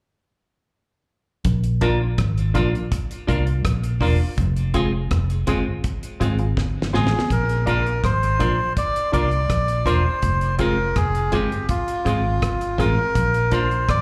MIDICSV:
0, 0, Header, 1, 7, 480
1, 0, Start_track
1, 0, Tempo, 731707
1, 953, Time_signature, 4, 2, 24, 8
1, 9194, End_track
2, 0, Start_track
2, 0, Title_t, "Melodica"
2, 0, Program_c, 0, 22
2, 4560, Note_on_c, 0, 68, 88
2, 4802, Note_on_c, 0, 70, 84
2, 4803, Note_off_c, 0, 68, 0
2, 5021, Note_off_c, 0, 70, 0
2, 5040, Note_on_c, 0, 70, 89
2, 5260, Note_off_c, 0, 70, 0
2, 5276, Note_on_c, 0, 72, 104
2, 5727, Note_off_c, 0, 72, 0
2, 5760, Note_on_c, 0, 74, 99
2, 5979, Note_off_c, 0, 74, 0
2, 5991, Note_on_c, 0, 74, 88
2, 6467, Note_on_c, 0, 72, 103
2, 6485, Note_off_c, 0, 74, 0
2, 6923, Note_off_c, 0, 72, 0
2, 6947, Note_on_c, 0, 70, 88
2, 7192, Note_on_c, 0, 68, 94
2, 7196, Note_off_c, 0, 70, 0
2, 7433, Note_on_c, 0, 67, 69
2, 7439, Note_off_c, 0, 68, 0
2, 7655, Note_off_c, 0, 67, 0
2, 7671, Note_on_c, 0, 65, 90
2, 8389, Note_on_c, 0, 70, 90
2, 8412, Note_off_c, 0, 65, 0
2, 8870, Note_on_c, 0, 72, 91
2, 8884, Note_off_c, 0, 70, 0
2, 9114, Note_on_c, 0, 74, 109
2, 9117, Note_off_c, 0, 72, 0
2, 9194, Note_off_c, 0, 74, 0
2, 9194, End_track
3, 0, Start_track
3, 0, Title_t, "Synth stab"
3, 0, Program_c, 1, 62
3, 1189, Note_on_c, 1, 62, 103
3, 1193, Note_on_c, 1, 65, 96
3, 1196, Note_on_c, 1, 70, 118
3, 1286, Note_off_c, 1, 62, 0
3, 1288, Note_off_c, 1, 65, 0
3, 1290, Note_off_c, 1, 70, 0
3, 1667, Note_on_c, 1, 62, 92
3, 1670, Note_on_c, 1, 65, 90
3, 1676, Note_on_c, 1, 70, 103
3, 1765, Note_off_c, 1, 62, 0
3, 1767, Note_off_c, 1, 65, 0
3, 1770, Note_off_c, 1, 70, 0
3, 2147, Note_on_c, 1, 62, 84
3, 2152, Note_on_c, 1, 65, 85
3, 2156, Note_on_c, 1, 70, 101
3, 2246, Note_off_c, 1, 62, 0
3, 2248, Note_off_c, 1, 65, 0
3, 2250, Note_off_c, 1, 70, 0
3, 2628, Note_on_c, 1, 62, 88
3, 2632, Note_on_c, 1, 65, 78
3, 2636, Note_on_c, 1, 70, 99
3, 2726, Note_off_c, 1, 62, 0
3, 2728, Note_off_c, 1, 65, 0
3, 2730, Note_off_c, 1, 70, 0
3, 3109, Note_on_c, 1, 60, 91
3, 3113, Note_on_c, 1, 65, 83
3, 3118, Note_on_c, 1, 68, 111
3, 3206, Note_off_c, 1, 60, 0
3, 3208, Note_off_c, 1, 65, 0
3, 3211, Note_off_c, 1, 68, 0
3, 3589, Note_on_c, 1, 60, 96
3, 3592, Note_on_c, 1, 65, 83
3, 3597, Note_on_c, 1, 68, 108
3, 3686, Note_off_c, 1, 60, 0
3, 3688, Note_off_c, 1, 65, 0
3, 3690, Note_off_c, 1, 68, 0
3, 4067, Note_on_c, 1, 60, 93
3, 4072, Note_on_c, 1, 65, 79
3, 4075, Note_on_c, 1, 68, 93
3, 4165, Note_off_c, 1, 60, 0
3, 4167, Note_off_c, 1, 65, 0
3, 4169, Note_off_c, 1, 68, 0
3, 4194, Note_on_c, 1, 68, 48
3, 4195, Note_on_c, 1, 65, 42
3, 4242, Note_off_c, 1, 65, 0
3, 4242, Note_off_c, 1, 68, 0
3, 4547, Note_on_c, 1, 60, 94
3, 4552, Note_on_c, 1, 65, 75
3, 4556, Note_on_c, 1, 68, 106
3, 4645, Note_off_c, 1, 60, 0
3, 4647, Note_off_c, 1, 65, 0
3, 4649, Note_off_c, 1, 68, 0
3, 4672, Note_on_c, 1, 65, 34
3, 4672, Note_on_c, 1, 68, 37
3, 4720, Note_off_c, 1, 65, 0
3, 4721, Note_off_c, 1, 68, 0
3, 5025, Note_on_c, 1, 62, 106
3, 5029, Note_on_c, 1, 65, 81
3, 5034, Note_on_c, 1, 70, 112
3, 5124, Note_off_c, 1, 62, 0
3, 5126, Note_off_c, 1, 65, 0
3, 5128, Note_off_c, 1, 70, 0
3, 5506, Note_on_c, 1, 62, 97
3, 5509, Note_on_c, 1, 65, 81
3, 5514, Note_on_c, 1, 70, 102
3, 5604, Note_off_c, 1, 62, 0
3, 5606, Note_off_c, 1, 65, 0
3, 5608, Note_off_c, 1, 70, 0
3, 5984, Note_on_c, 1, 62, 92
3, 5989, Note_on_c, 1, 65, 80
3, 5993, Note_on_c, 1, 70, 100
3, 6083, Note_off_c, 1, 62, 0
3, 6086, Note_off_c, 1, 65, 0
3, 6088, Note_off_c, 1, 70, 0
3, 6465, Note_on_c, 1, 62, 92
3, 6468, Note_on_c, 1, 65, 74
3, 6472, Note_on_c, 1, 70, 105
3, 6564, Note_off_c, 1, 62, 0
3, 6565, Note_off_c, 1, 65, 0
3, 6567, Note_off_c, 1, 70, 0
3, 6944, Note_on_c, 1, 60, 101
3, 6948, Note_on_c, 1, 65, 97
3, 6952, Note_on_c, 1, 68, 106
3, 7043, Note_off_c, 1, 60, 0
3, 7045, Note_off_c, 1, 65, 0
3, 7047, Note_off_c, 1, 68, 0
3, 7424, Note_on_c, 1, 60, 96
3, 7428, Note_on_c, 1, 65, 92
3, 7432, Note_on_c, 1, 68, 108
3, 7523, Note_off_c, 1, 60, 0
3, 7525, Note_off_c, 1, 65, 0
3, 7527, Note_off_c, 1, 68, 0
3, 7904, Note_on_c, 1, 60, 90
3, 7908, Note_on_c, 1, 65, 88
3, 7913, Note_on_c, 1, 68, 94
3, 8003, Note_off_c, 1, 60, 0
3, 8004, Note_off_c, 1, 65, 0
3, 8007, Note_off_c, 1, 68, 0
3, 8385, Note_on_c, 1, 60, 95
3, 8389, Note_on_c, 1, 65, 86
3, 8393, Note_on_c, 1, 68, 94
3, 8483, Note_off_c, 1, 60, 0
3, 8485, Note_off_c, 1, 65, 0
3, 8487, Note_off_c, 1, 68, 0
3, 8866, Note_on_c, 1, 62, 98
3, 8869, Note_on_c, 1, 65, 94
3, 8873, Note_on_c, 1, 70, 114
3, 8963, Note_off_c, 1, 62, 0
3, 8965, Note_off_c, 1, 65, 0
3, 8967, Note_off_c, 1, 70, 0
3, 9194, End_track
4, 0, Start_track
4, 0, Title_t, "Clean electric guitar"
4, 0, Program_c, 2, 27
4, 1193, Note_on_c, 2, 58, 76
4, 1201, Note_on_c, 2, 62, 98
4, 1206, Note_on_c, 2, 65, 101
4, 1294, Note_off_c, 2, 58, 0
4, 1298, Note_off_c, 2, 62, 0
4, 1301, Note_off_c, 2, 65, 0
4, 1671, Note_on_c, 2, 58, 79
4, 1676, Note_on_c, 2, 62, 80
4, 1683, Note_on_c, 2, 65, 97
4, 1773, Note_off_c, 2, 58, 0
4, 1776, Note_off_c, 2, 62, 0
4, 1779, Note_off_c, 2, 65, 0
4, 2150, Note_on_c, 2, 58, 73
4, 2156, Note_on_c, 2, 62, 76
4, 2161, Note_on_c, 2, 65, 85
4, 2253, Note_off_c, 2, 58, 0
4, 2255, Note_off_c, 2, 62, 0
4, 2258, Note_off_c, 2, 65, 0
4, 2628, Note_on_c, 2, 58, 72
4, 2635, Note_on_c, 2, 62, 71
4, 2642, Note_on_c, 2, 65, 81
4, 2731, Note_off_c, 2, 58, 0
4, 2735, Note_off_c, 2, 62, 0
4, 2739, Note_off_c, 2, 65, 0
4, 3112, Note_on_c, 2, 56, 74
4, 3118, Note_on_c, 2, 60, 80
4, 3124, Note_on_c, 2, 65, 81
4, 3213, Note_off_c, 2, 56, 0
4, 3216, Note_off_c, 2, 60, 0
4, 3219, Note_off_c, 2, 65, 0
4, 3589, Note_on_c, 2, 56, 75
4, 3595, Note_on_c, 2, 60, 91
4, 3601, Note_on_c, 2, 65, 86
4, 3692, Note_off_c, 2, 56, 0
4, 3695, Note_off_c, 2, 60, 0
4, 3698, Note_off_c, 2, 65, 0
4, 4071, Note_on_c, 2, 56, 69
4, 4078, Note_on_c, 2, 60, 74
4, 4082, Note_on_c, 2, 65, 75
4, 4173, Note_off_c, 2, 56, 0
4, 4177, Note_off_c, 2, 60, 0
4, 4179, Note_off_c, 2, 65, 0
4, 4550, Note_on_c, 2, 56, 79
4, 4557, Note_on_c, 2, 60, 90
4, 4563, Note_on_c, 2, 65, 85
4, 4652, Note_off_c, 2, 56, 0
4, 4656, Note_off_c, 2, 60, 0
4, 4659, Note_off_c, 2, 65, 0
4, 5029, Note_on_c, 2, 58, 73
4, 5036, Note_on_c, 2, 62, 76
4, 5041, Note_on_c, 2, 65, 87
4, 5132, Note_off_c, 2, 58, 0
4, 5135, Note_off_c, 2, 62, 0
4, 5138, Note_off_c, 2, 65, 0
4, 5511, Note_on_c, 2, 58, 68
4, 5517, Note_on_c, 2, 62, 76
4, 5523, Note_on_c, 2, 65, 75
4, 5613, Note_off_c, 2, 58, 0
4, 5615, Note_off_c, 2, 62, 0
4, 5619, Note_off_c, 2, 65, 0
4, 5991, Note_on_c, 2, 58, 72
4, 5999, Note_on_c, 2, 62, 76
4, 6004, Note_on_c, 2, 65, 74
4, 6092, Note_off_c, 2, 58, 0
4, 6096, Note_off_c, 2, 62, 0
4, 6099, Note_off_c, 2, 65, 0
4, 6468, Note_on_c, 2, 58, 80
4, 6475, Note_on_c, 2, 62, 86
4, 6481, Note_on_c, 2, 65, 93
4, 6571, Note_off_c, 2, 58, 0
4, 6574, Note_off_c, 2, 62, 0
4, 6577, Note_off_c, 2, 65, 0
4, 6950, Note_on_c, 2, 56, 85
4, 6955, Note_on_c, 2, 60, 84
4, 6961, Note_on_c, 2, 65, 96
4, 7051, Note_off_c, 2, 56, 0
4, 7054, Note_off_c, 2, 60, 0
4, 7057, Note_off_c, 2, 65, 0
4, 7428, Note_on_c, 2, 56, 81
4, 7436, Note_on_c, 2, 60, 77
4, 7442, Note_on_c, 2, 65, 78
4, 7530, Note_off_c, 2, 56, 0
4, 7534, Note_off_c, 2, 60, 0
4, 7537, Note_off_c, 2, 65, 0
4, 7909, Note_on_c, 2, 56, 69
4, 7916, Note_on_c, 2, 60, 65
4, 7921, Note_on_c, 2, 65, 72
4, 8011, Note_off_c, 2, 56, 0
4, 8014, Note_off_c, 2, 60, 0
4, 8017, Note_off_c, 2, 65, 0
4, 8386, Note_on_c, 2, 56, 67
4, 8394, Note_on_c, 2, 60, 68
4, 8400, Note_on_c, 2, 65, 84
4, 8489, Note_off_c, 2, 56, 0
4, 8493, Note_off_c, 2, 60, 0
4, 8496, Note_off_c, 2, 65, 0
4, 8869, Note_on_c, 2, 58, 74
4, 8876, Note_on_c, 2, 62, 82
4, 8881, Note_on_c, 2, 65, 97
4, 8970, Note_off_c, 2, 58, 0
4, 8974, Note_off_c, 2, 62, 0
4, 8976, Note_off_c, 2, 65, 0
4, 9194, End_track
5, 0, Start_track
5, 0, Title_t, "Fingered electric bass"
5, 0, Program_c, 3, 33
5, 955, Note_on_c, 3, 34, 107
5, 1408, Note_off_c, 3, 34, 0
5, 1438, Note_on_c, 3, 32, 95
5, 1658, Note_off_c, 3, 32, 0
5, 1680, Note_on_c, 3, 34, 97
5, 1790, Note_off_c, 3, 34, 0
5, 2162, Note_on_c, 3, 36, 98
5, 2380, Note_off_c, 3, 36, 0
5, 2396, Note_on_c, 3, 34, 67
5, 2617, Note_off_c, 3, 34, 0
5, 2634, Note_on_c, 3, 28, 86
5, 2746, Note_off_c, 3, 28, 0
5, 2877, Note_on_c, 3, 29, 111
5, 3329, Note_off_c, 3, 29, 0
5, 3356, Note_on_c, 3, 29, 92
5, 3577, Note_off_c, 3, 29, 0
5, 3598, Note_on_c, 3, 31, 88
5, 3709, Note_off_c, 3, 31, 0
5, 4080, Note_on_c, 3, 32, 90
5, 4299, Note_off_c, 3, 32, 0
5, 4316, Note_on_c, 3, 31, 86
5, 4536, Note_off_c, 3, 31, 0
5, 4560, Note_on_c, 3, 33, 90
5, 4670, Note_off_c, 3, 33, 0
5, 4796, Note_on_c, 3, 34, 92
5, 5248, Note_off_c, 3, 34, 0
5, 5278, Note_on_c, 3, 32, 91
5, 5498, Note_off_c, 3, 32, 0
5, 5520, Note_on_c, 3, 34, 93
5, 5629, Note_off_c, 3, 34, 0
5, 5997, Note_on_c, 3, 36, 96
5, 6217, Note_off_c, 3, 36, 0
5, 6235, Note_on_c, 3, 34, 77
5, 6456, Note_off_c, 3, 34, 0
5, 6472, Note_on_c, 3, 28, 82
5, 6584, Note_off_c, 3, 28, 0
5, 6715, Note_on_c, 3, 29, 93
5, 7167, Note_off_c, 3, 29, 0
5, 7196, Note_on_c, 3, 29, 88
5, 7415, Note_off_c, 3, 29, 0
5, 7439, Note_on_c, 3, 31, 89
5, 7548, Note_off_c, 3, 31, 0
5, 7918, Note_on_c, 3, 32, 90
5, 8136, Note_off_c, 3, 32, 0
5, 8155, Note_on_c, 3, 31, 79
5, 8375, Note_off_c, 3, 31, 0
5, 8390, Note_on_c, 3, 33, 86
5, 8503, Note_off_c, 3, 33, 0
5, 8635, Note_on_c, 3, 34, 96
5, 9086, Note_off_c, 3, 34, 0
5, 9114, Note_on_c, 3, 32, 97
5, 9194, Note_off_c, 3, 32, 0
5, 9194, End_track
6, 0, Start_track
6, 0, Title_t, "Muted clean electric guitar strokes"
6, 4673, Note_on_c, 9, 29, 51
6, 4739, Note_off_c, 9, 29, 0
6, 8512, Note_on_c, 9, 29, 47
6, 8578, Note_off_c, 9, 29, 0
6, 9194, End_track
7, 0, Start_track
7, 0, Title_t, "Drums"
7, 949, Note_on_c, 9, 42, 86
7, 951, Note_on_c, 9, 36, 107
7, 1014, Note_off_c, 9, 42, 0
7, 1016, Note_off_c, 9, 36, 0
7, 1073, Note_on_c, 9, 42, 46
7, 1139, Note_off_c, 9, 42, 0
7, 1189, Note_on_c, 9, 42, 70
7, 1192, Note_on_c, 9, 36, 90
7, 1254, Note_off_c, 9, 42, 0
7, 1257, Note_off_c, 9, 36, 0
7, 1431, Note_on_c, 9, 42, 71
7, 1432, Note_on_c, 9, 36, 99
7, 1434, Note_on_c, 9, 37, 89
7, 1496, Note_off_c, 9, 42, 0
7, 1498, Note_off_c, 9, 36, 0
7, 1500, Note_off_c, 9, 37, 0
7, 1558, Note_on_c, 9, 42, 44
7, 1624, Note_off_c, 9, 42, 0
7, 1672, Note_on_c, 9, 42, 68
7, 1675, Note_on_c, 9, 36, 89
7, 1678, Note_on_c, 9, 37, 55
7, 1738, Note_off_c, 9, 42, 0
7, 1741, Note_off_c, 9, 36, 0
7, 1744, Note_off_c, 9, 37, 0
7, 1805, Note_on_c, 9, 42, 31
7, 1871, Note_off_c, 9, 42, 0
7, 1914, Note_on_c, 9, 36, 110
7, 1914, Note_on_c, 9, 42, 94
7, 1979, Note_off_c, 9, 36, 0
7, 1979, Note_off_c, 9, 42, 0
7, 2039, Note_on_c, 9, 42, 44
7, 2104, Note_off_c, 9, 42, 0
7, 2155, Note_on_c, 9, 36, 96
7, 2160, Note_on_c, 9, 42, 72
7, 2221, Note_off_c, 9, 36, 0
7, 2226, Note_off_c, 9, 42, 0
7, 2275, Note_on_c, 9, 42, 32
7, 2340, Note_off_c, 9, 42, 0
7, 2392, Note_on_c, 9, 36, 106
7, 2394, Note_on_c, 9, 37, 110
7, 2396, Note_on_c, 9, 42, 91
7, 2458, Note_off_c, 9, 36, 0
7, 2460, Note_off_c, 9, 37, 0
7, 2461, Note_off_c, 9, 42, 0
7, 2516, Note_on_c, 9, 42, 51
7, 2582, Note_off_c, 9, 42, 0
7, 2628, Note_on_c, 9, 36, 72
7, 2636, Note_on_c, 9, 46, 72
7, 2694, Note_off_c, 9, 36, 0
7, 2701, Note_off_c, 9, 46, 0
7, 2872, Note_on_c, 9, 36, 100
7, 2872, Note_on_c, 9, 42, 92
7, 2937, Note_off_c, 9, 42, 0
7, 2938, Note_off_c, 9, 36, 0
7, 2995, Note_on_c, 9, 42, 42
7, 3060, Note_off_c, 9, 42, 0
7, 3110, Note_on_c, 9, 42, 68
7, 3112, Note_on_c, 9, 36, 83
7, 3175, Note_off_c, 9, 42, 0
7, 3178, Note_off_c, 9, 36, 0
7, 3351, Note_on_c, 9, 42, 70
7, 3352, Note_on_c, 9, 36, 108
7, 3354, Note_on_c, 9, 37, 105
7, 3416, Note_off_c, 9, 42, 0
7, 3418, Note_off_c, 9, 36, 0
7, 3420, Note_off_c, 9, 37, 0
7, 3476, Note_on_c, 9, 42, 45
7, 3542, Note_off_c, 9, 42, 0
7, 3589, Note_on_c, 9, 42, 66
7, 3594, Note_on_c, 9, 36, 99
7, 3654, Note_off_c, 9, 42, 0
7, 3659, Note_off_c, 9, 36, 0
7, 3830, Note_on_c, 9, 42, 86
7, 3832, Note_on_c, 9, 36, 97
7, 3896, Note_off_c, 9, 42, 0
7, 3898, Note_off_c, 9, 36, 0
7, 3955, Note_on_c, 9, 42, 53
7, 4021, Note_off_c, 9, 42, 0
7, 4073, Note_on_c, 9, 36, 95
7, 4076, Note_on_c, 9, 42, 68
7, 4139, Note_off_c, 9, 36, 0
7, 4141, Note_off_c, 9, 42, 0
7, 4189, Note_on_c, 9, 42, 30
7, 4255, Note_off_c, 9, 42, 0
7, 4311, Note_on_c, 9, 36, 107
7, 4315, Note_on_c, 9, 38, 49
7, 4376, Note_off_c, 9, 36, 0
7, 4381, Note_off_c, 9, 38, 0
7, 4475, Note_on_c, 9, 38, 67
7, 4541, Note_off_c, 9, 38, 0
7, 4555, Note_on_c, 9, 38, 67
7, 4621, Note_off_c, 9, 38, 0
7, 4637, Note_on_c, 9, 38, 81
7, 4702, Note_off_c, 9, 38, 0
7, 4715, Note_on_c, 9, 38, 83
7, 4781, Note_off_c, 9, 38, 0
7, 4791, Note_on_c, 9, 36, 108
7, 4792, Note_on_c, 9, 42, 82
7, 4857, Note_off_c, 9, 36, 0
7, 4858, Note_off_c, 9, 42, 0
7, 4915, Note_on_c, 9, 42, 42
7, 4981, Note_off_c, 9, 42, 0
7, 5031, Note_on_c, 9, 42, 63
7, 5032, Note_on_c, 9, 36, 84
7, 5097, Note_off_c, 9, 42, 0
7, 5098, Note_off_c, 9, 36, 0
7, 5159, Note_on_c, 9, 42, 32
7, 5225, Note_off_c, 9, 42, 0
7, 5272, Note_on_c, 9, 36, 105
7, 5274, Note_on_c, 9, 42, 68
7, 5278, Note_on_c, 9, 37, 85
7, 5338, Note_off_c, 9, 36, 0
7, 5340, Note_off_c, 9, 42, 0
7, 5344, Note_off_c, 9, 37, 0
7, 5399, Note_on_c, 9, 42, 43
7, 5465, Note_off_c, 9, 42, 0
7, 5511, Note_on_c, 9, 42, 62
7, 5514, Note_on_c, 9, 36, 88
7, 5518, Note_on_c, 9, 37, 56
7, 5577, Note_off_c, 9, 42, 0
7, 5580, Note_off_c, 9, 36, 0
7, 5583, Note_off_c, 9, 37, 0
7, 5751, Note_on_c, 9, 42, 87
7, 5752, Note_on_c, 9, 36, 107
7, 5817, Note_off_c, 9, 42, 0
7, 5818, Note_off_c, 9, 36, 0
7, 5878, Note_on_c, 9, 42, 51
7, 5943, Note_off_c, 9, 42, 0
7, 5993, Note_on_c, 9, 36, 87
7, 5994, Note_on_c, 9, 42, 67
7, 6058, Note_off_c, 9, 36, 0
7, 6060, Note_off_c, 9, 42, 0
7, 6110, Note_on_c, 9, 42, 29
7, 6176, Note_off_c, 9, 42, 0
7, 6230, Note_on_c, 9, 36, 111
7, 6231, Note_on_c, 9, 37, 102
7, 6232, Note_on_c, 9, 42, 88
7, 6296, Note_off_c, 9, 36, 0
7, 6297, Note_off_c, 9, 37, 0
7, 6298, Note_off_c, 9, 42, 0
7, 6351, Note_on_c, 9, 42, 52
7, 6417, Note_off_c, 9, 42, 0
7, 6466, Note_on_c, 9, 36, 78
7, 6473, Note_on_c, 9, 42, 69
7, 6532, Note_off_c, 9, 36, 0
7, 6538, Note_off_c, 9, 42, 0
7, 6707, Note_on_c, 9, 42, 82
7, 6709, Note_on_c, 9, 36, 100
7, 6772, Note_off_c, 9, 42, 0
7, 6775, Note_off_c, 9, 36, 0
7, 6830, Note_on_c, 9, 42, 42
7, 6896, Note_off_c, 9, 42, 0
7, 6945, Note_on_c, 9, 42, 69
7, 6949, Note_on_c, 9, 36, 90
7, 7010, Note_off_c, 9, 42, 0
7, 7015, Note_off_c, 9, 36, 0
7, 7189, Note_on_c, 9, 42, 69
7, 7190, Note_on_c, 9, 36, 112
7, 7192, Note_on_c, 9, 37, 95
7, 7254, Note_off_c, 9, 42, 0
7, 7255, Note_off_c, 9, 36, 0
7, 7258, Note_off_c, 9, 37, 0
7, 7313, Note_on_c, 9, 42, 45
7, 7379, Note_off_c, 9, 42, 0
7, 7426, Note_on_c, 9, 42, 70
7, 7432, Note_on_c, 9, 36, 84
7, 7492, Note_off_c, 9, 42, 0
7, 7498, Note_off_c, 9, 36, 0
7, 7558, Note_on_c, 9, 42, 36
7, 7624, Note_off_c, 9, 42, 0
7, 7667, Note_on_c, 9, 42, 82
7, 7670, Note_on_c, 9, 36, 116
7, 7732, Note_off_c, 9, 42, 0
7, 7735, Note_off_c, 9, 36, 0
7, 7793, Note_on_c, 9, 42, 48
7, 7858, Note_off_c, 9, 42, 0
7, 7911, Note_on_c, 9, 36, 95
7, 7915, Note_on_c, 9, 42, 66
7, 7977, Note_off_c, 9, 36, 0
7, 7981, Note_off_c, 9, 42, 0
7, 8149, Note_on_c, 9, 36, 104
7, 8152, Note_on_c, 9, 37, 106
7, 8153, Note_on_c, 9, 42, 82
7, 8215, Note_off_c, 9, 36, 0
7, 8217, Note_off_c, 9, 37, 0
7, 8218, Note_off_c, 9, 42, 0
7, 8273, Note_on_c, 9, 42, 46
7, 8339, Note_off_c, 9, 42, 0
7, 8386, Note_on_c, 9, 36, 80
7, 8395, Note_on_c, 9, 42, 66
7, 8452, Note_off_c, 9, 36, 0
7, 8460, Note_off_c, 9, 42, 0
7, 8629, Note_on_c, 9, 36, 105
7, 8629, Note_on_c, 9, 42, 88
7, 8695, Note_off_c, 9, 36, 0
7, 8695, Note_off_c, 9, 42, 0
7, 8752, Note_on_c, 9, 42, 46
7, 8818, Note_off_c, 9, 42, 0
7, 8866, Note_on_c, 9, 42, 77
7, 8869, Note_on_c, 9, 36, 79
7, 8931, Note_off_c, 9, 42, 0
7, 8934, Note_off_c, 9, 36, 0
7, 8995, Note_on_c, 9, 42, 36
7, 9061, Note_off_c, 9, 42, 0
7, 9109, Note_on_c, 9, 36, 109
7, 9109, Note_on_c, 9, 42, 70
7, 9112, Note_on_c, 9, 37, 97
7, 9174, Note_off_c, 9, 42, 0
7, 9175, Note_off_c, 9, 36, 0
7, 9178, Note_off_c, 9, 37, 0
7, 9194, End_track
0, 0, End_of_file